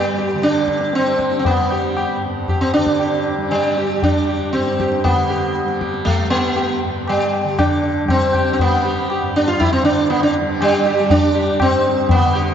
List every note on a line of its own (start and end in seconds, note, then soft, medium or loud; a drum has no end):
0.00 2.16 G2 medium
0.00 0.33 D3 medium
0.00 0.44 G3 medium
0.00 0.94 G3 soft
0.18 0.42 G4 soft
0.34 2.77 D3 medium
0.42 0.95 D4 medium
0.42 tabla te medium
0.55 tabla te medium
0.68 tabla ke medium
0.81 tabla te medium
0.93 1.57 G3 medium
0.93 1.38 C4 medium
0.93 tabla te medium
1.06 tabla te soft
1.19 tabla ke medium
1.32 tabla te medium
1.39 1.46 C4 medium
1.45 2.19 B3 medium
1.45 tabla tin medium
1.45 tabla ge medium
1.57 3.37 G3 soft
1.72 1.96 G4 soft
1.97 2.21 G4 soft
1.97 tabla na medium
2.17 4.57 G2 soft
2.48 2.73 G4 soft
2.48 tabla tin medium
2.48 tabla ge medium
2.61 2.73 C4 medium
2.74 5.03 D3 medium
2.74 3.34 D4 medium
2.74 tabla na medium
2.87 tabla ke medium
3.00 3.24 G4 soft
3.00 tabla tin medium
3.26 tabla na medium
3.37 3.97 G3 soft
3.51 4.04 G3 medium
3.51 tabla te medium
3.77 4.01 G4 soft
3.77 tabla te medium
3.97 5.64 G3 medium
4.03 4.51 D4 medium
4.03 tabla tin medium
4.03 tabla ge medium
4.29 4.52 G4 soft
4.53 5.04 C4 medium
4.53 4.77 G4 soft
4.53 tabla te medium
4.57 6.84 G2 medium
4.67 tabla te medium
4.80 5.04 G4 soft
4.80 tabla ke medium
4.92 tabla te medium
5.04 7.43 D3 soft
5.04 5.77 B3 medium
5.04 tabla tin loud
5.04 tabla ge medium
5.30 5.54 G4 soft
5.56 tabla te medium
5.64 6.24 G3 medium
5.64 tabla te medium
5.81 6.05 G4 soft
5.81 tabla ke soft
5.94 tabla te medium
6.05 6.30 A3 medium
6.05 tabla tin medium
6.05 tabla ge medium
6.24 8.05 G3 medium
6.30 6.78 B3 medium
6.30 tabla na medium
6.56 6.80 G4 soft
6.56 tabla tin medium
6.84 9.22 G2 medium
7.08 7.61 G3 medium
7.08 tabla na medium
7.33 tabla na medium
7.44 9.82 D3 medium
7.59 8.10 D4 medium
7.59 tabla na medium
7.59 tabla ge medium
7.84 tabla te medium
8.05 8.63 G3 medium
8.05 tabla na medium
8.05 tabla ge medium
8.10 8.52 C4 medium
8.34 8.58 G4 soft
8.34 tabla ge medium
8.53 8.60 C4 medium
8.59 10.41 G3 medium
8.59 9.36 B3 medium
8.59 tabla tin loud
8.59 tabla ge medium
8.85 9.08 G4 soft
9.10 9.34 G4 soft
9.10 tabla na medium
9.22 11.57 G2 medium
9.36 9.48 D4 medium
9.48 9.61 F4 medium
9.60 9.72 E4 medium
9.60 tabla tin medium
9.60 tabla ge medium
9.73 9.84 C4 medium
9.82 12.17 D3 medium
9.82 10.09 D4 medium
9.82 tabla na medium
10.10 10.23 B3 medium
10.10 tabla tin medium
10.23 10.34 D4 medium
10.41 11.00 G3 medium
10.61 11.12 G3 medium
10.61 tabla na medium
10.86 11.09 G4 soft
11.00 12.54 G3 medium
11.10 11.61 D4 medium
11.10 tabla tin medium
11.10 tabla ge medium
11.35 11.58 G4 soft
11.58 12.54 G2 medium
11.58 12.11 C4 medium
11.58 tabla na medium
11.58 tabla ge medium
12.09 12.54 B3 medium
12.09 tabla tin loud
12.09 tabla ge medium
12.17 12.54 D3 medium
12.35 12.54 G4 soft